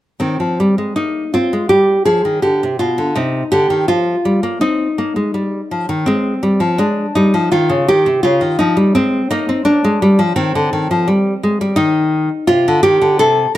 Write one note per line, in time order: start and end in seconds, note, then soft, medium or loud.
0.20 0.38 D#3 medium
0.20 0.92 C4 medium
0.40 0.57 F3 soft
0.60 0.77 G3 medium
0.78 0.95 G#3 soft
0.96 1.23 A#3 soft
0.96 1.31 D#4 medium
1.34 1.51 C4 medium
1.34 1.69 F4 medium
1.53 1.69 G#3 medium
1.69 1.96 G3 medium
1.69 2.04 G4 medium
2.05 2.23 F3 medium
2.05 2.41 G#4 medium
2.25 2.42 D#3 soft
2.42 2.60 D3 medium
2.42 2.77 G4 medium
2.63 2.79 C3 medium
2.79 2.97 B2 soft
2.79 3.14 F4 medium
2.98 3.15 D3 medium
3.15 3.42 C3 medium
3.15 3.50 D#4 medium
3.52 3.69 D3 medium
3.52 3.87 G4 medium
3.70 3.87 D#3 medium
3.88 4.14 F3 medium
3.88 4.57 F4 medium
4.25 4.42 G3 medium
4.43 4.60 A#3 medium
4.61 4.87 C4 medium
4.61 6.02 D#4 medium
4.98 5.15 A#3 medium
5.16 5.33 G#3 soft
5.34 5.60 G3 medium
5.71 5.87 F3 medium
5.89 6.05 D#3 medium
6.06 6.33 G#3 medium
6.06 6.76 C4 medium
6.43 6.60 G3 medium
6.60 6.77 F3 medium
6.78 7.05 G#3 medium
6.78 7.13 D4 medium
7.15 7.33 G3 medium
7.15 7.50 D#4 medium
7.34 7.51 F3 medium
7.52 7.69 D#3 medium
7.52 7.86 F4 medium
7.69 7.86 C#3 medium
7.88 8.05 D#3 medium
7.88 8.22 G4 medium
8.06 8.23 C3 medium
8.23 8.41 C#3 medium
8.23 8.57 F4 medium
8.41 8.58 D#3 medium
8.59 8.76 F3 medium
8.59 8.93 D#4 medium
8.77 8.93 G3 medium
8.95 9.21 G#3 medium
8.95 9.29 C4 medium
9.31 9.48 A#3 medium
9.31 9.64 D#4 medium
9.49 9.65 C4 medium
9.65 9.82 A#3 medium
9.65 10.33 D4 medium
9.84 10.01 G#3 medium
10.02 10.18 G3 medium
10.19 10.35 F3 medium
10.36 10.53 D#3 medium
10.36 11.73 C4 medium
10.55 10.72 D3 medium
10.73 10.89 D#3 medium
10.91 11.07 F3 medium
11.08 11.33 G3 medium
11.43 11.60 G#3 medium
11.61 11.77 G3 medium
11.76 12.28 D#3 medium
11.76 12.45 D#4 medium
12.47 12.65 C3 medium
12.47 12.82 F4 medium
12.68 12.83 D3 medium
12.83 13.01 D#3 medium
12.83 13.18 G4 loud
13.02 13.19 D3 medium
13.19 13.45 C3 medium
13.19 13.54 A4 medium